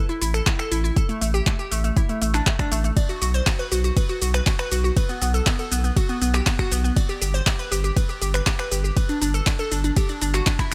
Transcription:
0.09 synth arpeggio sound E4, closed hi-hat, shaker
0.21 sub bass A1, synth arpeggio sound E4, open hi-hat, shaker
0.34 synth arpeggio sound A4, finger snap, closed hi-hat, shaker
0.46 synth arpeggio sound E4, kick, clap, closed hi-hat, shaker
0.59 synth arpeggio sound A4, finger snap, closed hi-hat, shaker
0.71 sub bass A1, synth arpeggio sound E4, open hi-hat, shaker
0.84 synth arpeggio sound E4, shaker
0.96 synth arpeggio sound A4, kick, closed hi-hat, shaker
1.09 synth arpeggio sound A3, closed hi-hat, shaker
1.21 sub bass A1, synth arpeggio sound A3, open hi-hat, shaker
1.34 synth arpeggio sound G4, closed hi-hat, shaker
1.47 synth arpeggio sound A3, kick, clap, closed hi-hat, shaker
1.59 synth arpeggio sound G4, closed hi-hat, shaker
1.72 sub bass A1, synth arpeggio sound A3, open hi-hat, shaker
1.84 synth arpeggio sound A3, closed hi-hat, shaker
1.97 synth arpeggio sound E4, kick, closed hi-hat, shaker
2.09 synth arpeggio sound A3, closed hi-hat, shaker
2.22 sub bass A1, synth arpeggio sound A3, open hi-hat, shaker
2.34 synth arpeggio sound D4, finger snap, clap, closed hi-hat, shaker
2.47 synth arpeggio sound A3, kick, clap, closed hi-hat, shaker
2.59 synth arpeggio sound D4, finger snap, kick, closed hi-hat, shaker
2.72 sub bass A1, synth arpeggio sound A3, open hi-hat, shaker
2.84 synth arpeggio sound A3, closed hi-hat, shaker
2.97 synth arpeggio sound D5, kick, closed hi-hat, ride, shaker
3.09 synth arpeggio sound F#4, closed hi-hat, shaker
3.22 sub bass B1, synth arpeggio sound F#4, open hi-hat, shaker
3.34 synth arpeggio sound C5, closed hi-hat, shaker
3.47 synth arpeggio sound F#4, kick, clap, closed hi-hat, ride, shaker
3.59 synth arpeggio sound B4, closed hi-hat, shaker
3.72 sub bass B1, synth arpeggio sound F#4, open hi-hat, shaker
3.84 synth arpeggio sound F#4, closed hi-hat, shaker
3.97 synth arpeggio sound B4, kick, closed hi-hat, ride, shaker
4.09 synth arpeggio sound F#4, closed hi-hat, shaker
4.22 sub bass B1, synth arpeggio sound F#4, open hi-hat, shaker
4.34 synth arpeggio sound B4, finger snap, closed hi-hat, shaker
4.47 synth arpeggio sound F#4, kick, clap, closed hi-hat, ride, shaker
4.59 synth arpeggio sound B4, finger snap, closed hi-hat, shaker
4.72 sub bass B1, synth arpeggio sound F#4, open hi-hat, shaker
4.84 synth arpeggio sound F#4, shaker
4.97 synth arpeggio sound B4, kick, closed hi-hat, ride, shaker
5.09 synth arpeggio sound B3, closed hi-hat, shaker
5.22 sub bass B1, synth arpeggio sound B3, open hi-hat, shaker
5.34 synth arpeggio sound A4, closed hi-hat, shaker
5.46 synth arpeggio sound B3, kick, clap, closed hi-hat, ride, shaker
5.59 synth arpeggio sound A4, closed hi-hat, shaker
5.72 sub bass B1, synth arpeggio sound B3, open hi-hat, shaker
5.84 synth arpeggio sound B3, closed hi-hat, shaker
5.96 synth arpeggio sound F#4, kick, closed hi-hat, ride, shaker
6.09 synth arpeggio sound B3, closed hi-hat, shaker
6.22 sub bass B1, synth arpeggio sound B3, open hi-hat, shaker
6.34 synth arpeggio sound G4, finger snap, clap, closed hi-hat, shaker
6.46 synth arpeggio sound B3, kick, clap, closed hi-hat, ride, shaker
6.59 synth arpeggio sound F#4, finger snap, kick, closed hi-hat, shaker
6.71 sub bass B1, synth arpeggio sound B3, open hi-hat, shaker
6.84 synth arpeggio sound B3, shaker
6.97 synth arpeggio sound D5, kick, closed hi-hat, ride, shaker
7.09 synth arpeggio sound G4, closed hi-hat, shaker
7.22 sub bass G1, synth arpeggio sound G4, open hi-hat, shaker
7.34 synth arpeggio sound C5, closed hi-hat, shaker
7.47 synth arpeggio sound G4, kick, clap, closed hi-hat, ride, shaker
7.59 synth arpeggio sound B4, closed hi-hat, shaker
7.72 sub bass G1, synth arpeggio sound G4, open hi-hat, shaker
7.84 synth arpeggio sound G4, closed hi-hat, shaker
7.96 synth arpeggio sound B4, kick, closed hi-hat, ride, shaker
8.09 synth arpeggio sound G4, closed hi-hat, shaker
8.22 sub bass G1, synth arpeggio sound G4, open hi-hat, shaker
8.34 synth arpeggio sound B4, finger snap, closed hi-hat, shaker
8.47 synth arpeggio sound G4, kick, clap, closed hi-hat, ride, shaker
8.59 synth arpeggio sound B4, finger snap, closed hi-hat, shaker
8.71 sub bass G1, synth arpeggio sound G4, open hi-hat, shaker
8.84 synth arpeggio sound G4, shaker
8.97 synth arpeggio sound B4, kick, closed hi-hat, ride, shaker
9.09 synth arpeggio sound D4, closed hi-hat, shaker
9.22 sub bass G1, synth arpeggio sound D4, open hi-hat, shaker
9.34 synth arpeggio sound A4, closed hi-hat, shaker
9.47 synth arpeggio sound D4, kick, clap, closed hi-hat, ride, shaker
9.59 synth arpeggio sound A4, closed hi-hat, shaker
9.71 sub bass G1, synth arpeggio sound D4, open hi-hat, shaker
9.84 synth arpeggio sound D4, closed hi-hat, shaker
9.96 synth arpeggio sound G4, kick, closed hi-hat, ride, shaker
10.09 synth arpeggio sound D4, closed hi-hat, shaker
10.21 sub bass G1, synth arpeggio sound D4, open hi-hat, shaker
10.34 synth arpeggio sound F#4, finger snap, clap, closed hi-hat, shaker
10.47 synth arpeggio sound D4, kick, clap, closed hi-hat, ride, shaker
10.59 synth arpeggio sound E4, finger snap, kick, closed hi-hat, shaker

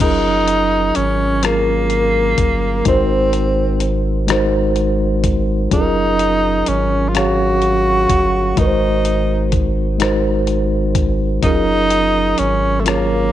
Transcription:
0.00 sub bass F#1, tine electric piano F#3 C#4 F4 G#4 A#4, tenor saxophone D#4, kick, closed hi-hat, crash
0.48 closed hi-hat
0.95 sub bass G#1, tenor saxophone C#4, closed hi-hat
1.41 tine electric piano F#3 C#4 F4 G#4, tenor saxophone A#3, cross-stick, closed hi-hat
1.46 tine electric piano A#4
1.90 closed hi-hat
2.38 sub bass G1, kick, closed hi-hat
2.85 sub bass G#1, tine electric piano G#3 D#4 F#4 A#4, tenor saxophone C4, kick, closed hi-hat
2.89 tine electric piano C5
3.33 closed hi-hat
3.80 closed hi-hat
4.27 tine electric piano G#3 D#4 F#4 A#4, cross-stick, closed hi-hat
4.32 tine electric piano C5
4.76 closed hi-hat
5.24 kick, closed hi-hat
5.70 sub bass F#1, tine electric piano F#3 C#4 F4 G#4, tenor saxophone D#4, kick, closed hi-hat
5.75 tine electric piano A4
5.81 tine electric piano A#4
6.19 closed hi-hat
6.66 sub bass G#1, tenor saxophone C#4, closed hi-hat
7.09 tenor saxophone F4
7.13 tine electric piano F#3 C#4 G#4 F5, tenor saxophone F#4, cross-stick, closed hi-hat
7.18 tine electric piano C#5
7.62 closed hi-hat
8.09 sub bass G1, kick, closed hi-hat
8.56 sub bass G#1, tine electric piano G#3 D#4 F#4 A#4, tenor saxophone D#4, kick, closed hi-hat
8.60 tine electric piano B4
8.67 tine electric piano C5
9.05 closed hi-hat
9.52 kick, closed hi-hat
9.98 tine electric piano G#3 D#4 F#4 A#4, cross-stick, closed hi-hat
10.03 tine electric piano C5
10.47 closed hi-hat
10.95 kick, closed hi-hat
11.41 sub bass F#1, tine electric piano F#3 C#4 F4 G#4, tenor saxophone D#4, kick, closed hi-hat
11.46 tine electric piano A#4
11.90 closed hi-hat
12.38 sub bass G#1, tenor saxophone C#4, closed hi-hat
12.80 tine electric piano F#3, tenor saxophone A3
12.85 tenor saxophone A#3, tine electric piano C#4 F4 G#4 C#5, cross-stick, closed hi-hat

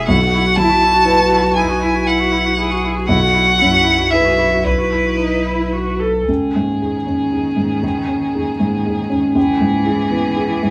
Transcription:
0.07 felt piano B1, sub bass B1, viola E4, cello F#4, violin F#5
0.21 viola F#4
0.34 viola E4
0.47 viola F#4
0.57 felt piano F#3, viola E4, cello E4, violin A5
0.69 viola F#4
0.81 viola E4, cello F#4
0.94 viola F#4
1.05 felt piano E4 B4, viola E4
1.18 viola F#4
1.30 viola E4
1.43 viola F#4
1.55 cello D#4, viola E4, violin G#5
1.69 viola F#4
1.82 viola E4, cello E4
1.95 viola F#4
2.06 viola E4, violin F#5
2.20 viola F#4
2.32 viola E4
2.45 viola F#4
2.58 viola E4, cello G#4
2.71 viola F#4
2.84 viola E4
2.96 viola F#4
3.07 felt piano B1, viola E4, cello F#4, violin F#5
3.21 viola F#4
3.34 viola E4
3.47 viola F#4
3.59 felt piano F#2, viola E4, cello E4
3.72 viola F#4
3.84 viola E4
3.98 viola F#4
4.10 viola E4, felt piano E4 B4, cello G#4, violin E5
4.24 viola F#4
4.38 viola E4, cello F#4
4.52 viola F#4
4.65 sub bass B1, viola E4, cello E4, violin B4
4.79 viola F#4
4.92 viola E4
5.06 viola F#4
5.19 viola D#4
5.47 viola E4
5.73 viola F#4
6.00 viola A4
6.27 felt piano C#2, cello D#3, violin G#4
6.56 felt piano G#2
6.82 felt piano D#4 G#4
7.06 felt piano C#4
7.32 felt piano D#4 G#4
7.56 felt piano G#2
7.82 felt piano C#2
8.08 felt piano C#4
8.35 felt piano D#4 G#4
8.60 felt piano G#2
8.85 felt piano D#4 G#4
9.10 felt piano C#4
9.35 felt piano C#2, cello E3, violin G#4
9.61 felt piano G#2
9.85 felt piano E4 G#4
10.10 felt piano B3
10.36 felt piano E4 G#4
10.63 felt piano G#2

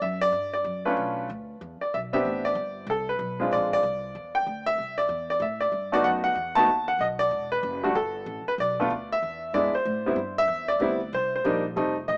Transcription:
0.02 upright bass F#2, grand piano E5
0.21 grand piano D5
0.32 upright bass G2
0.54 grand piano D5
0.64 upright bass F#2
0.85 grand piano A3 C#4 D4 F4 B4
0.97 upright bass B1
1.30 upright bass D2
1.61 upright bass E2
1.81 grand piano D5, muted upright bass stroke
1.94 upright bass B1, grand piano E5
2.13 grand piano B3 C4 D4 G4 E5
2.25 upright bass A1
2.45 grand piano D5
2.55 upright bass G1
2.87 upright bass C2, grand piano A4
3.09 grand piano B4
3.19 upright bass B1
3.40 grand piano G#3 C4 D4 F4
3.51 upright bass A#1, grand piano D5
3.73 grand piano D5
3.83 upright bass C2
4.15 upright bass E2
4.35 grand piano G5
4.47 upright bass D2
4.66 grand piano E5
4.78 upright bass C2
4.98 grand piano D5
5.09 upright bass E2
5.30 grand piano D5
5.40 upright bass A2, grand piano E5
5.61 grand piano D5
5.72 upright bass G2
5.92 grand piano A3 B3 D#4 F#4 D5
6.04 upright bass F#2, grand piano F#5
6.24 grand piano F#5
6.35 upright bass E2
6.55 grand piano A3 B3 D#4 F#4 A5
6.66 upright bass D#2
6.88 grand piano F#5
6.99 upright bass B1, grand piano D#5
7.19 grand piano D5
7.31 upright bass E1
7.52 grand piano B4
7.63 upright bass F#1
7.83 grand piano G3 A3 D4 F#4
7.95 upright bass G1, grand piano A4
8.26 upright bass A1
8.47 grand piano B4, muted upright bass stroke
8.58 upright bass B1, grand piano D5
8.80 grand piano A3 B3 D4 F4
8.90 upright bass D2
9.12 grand piano E5
9.22 upright bass E2
9.53 upright bass G#2, grand piano G#3 B3 D4 E4 D5
9.74 grand piano C5, muted upright bass stroke
9.85 upright bass A2
10.06 grand piano G3 B3 C4 E4
10.16 upright bass G2
10.38 grand piano E5
10.48 upright bass E2
10.68 grand piano D5
10.80 upright bass D2, grand piano G3 B3 C4 E4
11.13 upright bass C2, grand piano C5
11.36 grand piano C5
11.44 upright bass A#1, grand piano G3 A#3 D4 D#4
11.76 upright bass F1, grand piano G3 A3 C4 D#4
12.08 upright bass A1, grand piano D#5

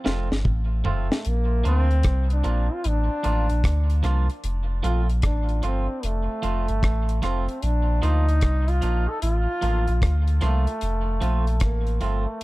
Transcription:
0.04 sub bass F1, clean electric guitar F3 A3 C4 F4, snare
0.32 sub bass G1, snare
0.45 sub bass A1, kick, mid tom
0.84 sub bass F1, clean electric guitar F3 A3 C4 F4, trombone A3, floor tom
1.12 snare
1.25 sub bass A#1, trombone A#3, closed hi-hat
1.64 sub bass D2, clean electric guitar F3 A#3 D4 F4, trombone C4, closed hi-hat
1.91 closed hi-hat
2.03 sub bass C2, kick, cross-stick, closed hi-hat
2.30 trombone D4, closed hi-hat
2.44 sub bass A#1, clean electric guitar F3 A#3 D4 F4, closed hi-hat
2.73 trombone F4
2.84 sub bass A1, trombone D4, closed hi-hat
3.23 sub bass A1, clean electric guitar F3 A#3 D4 F4, closed hi-hat
3.50 sub bass A#1, muted clean electric guitar stroke, closed hi-hat
3.64 sub bass D2, kick, cross-stick, closed hi-hat
3.90 closed hi-hat
4.03 sub bass C2, clean electric guitar F3 A#3 D4 F4, cross-stick, closed hi-hat
4.30 closed hi-hat
4.44 sub bass F1, closed hi-hat
4.83 sub bass A#1, clean electric guitar F3 A3 C4 F4, trombone F4, closed hi-hat
5.10 closed hi-hat
5.22 sub bass A1, trombone D4, kick, cross-stick, closed hi-hat
5.49 closed hi-hat
5.62 sub bass G1, clean electric guitar F3 A3 C4 F4, trombone C4, closed hi-hat
6.03 sub bass F1, trombone A3, closed hi-hat
6.42 sub bass F1, clean electric guitar F3 A3 C4 F4, closed hi-hat
6.68 sub bass G1, muted clean electric guitar stroke, closed hi-hat
6.83 sub bass A1, kick, cross-stick, closed hi-hat
7.09 closed hi-hat
7.22 sub bass F1, clean electric guitar F3 A3 C4 F4, trombone C4, cross-stick, closed hi-hat
7.49 closed hi-hat
7.62 sub bass A#1, trombone D4, closed hi-hat
8.02 sub bass D2, clean electric guitar F3 A#3 D4 F4, trombone D#4, closed hi-hat
8.29 closed hi-hat
8.41 sub bass C2, kick, cross-stick, closed hi-hat
8.68 trombone F4, closed hi-hat
8.82 sub bass A#1, clean electric guitar F3 A#3 D4 F4, closed hi-hat
9.08 trombone A4
9.22 sub bass A1, trombone F4, closed hi-hat
9.61 sub bass A1, clean electric guitar F3 A#3 D4 F4, closed hi-hat
9.87 sub bass A#1, closed hi-hat
10.02 sub bass D2, kick, cross-stick, closed hi-hat
10.28 closed hi-hat
10.41 sub bass C2, clean electric guitar F3 A#3 D4 F4, trombone A3, cross-stick, closed hi-hat
10.67 closed hi-hat
10.81 sub bass F1, closed hi-hat
11.21 sub bass A#1, clean electric guitar F3 A3 C4 F4, closed hi-hat
11.47 closed hi-hat
11.60 sub bass A1, trombone A#3, kick, cross-stick, closed hi-hat
11.87 closed hi-hat
12.01 sub bass G1, clean electric guitar F3 A3 C4 F4, trombone A3, closed hi-hat

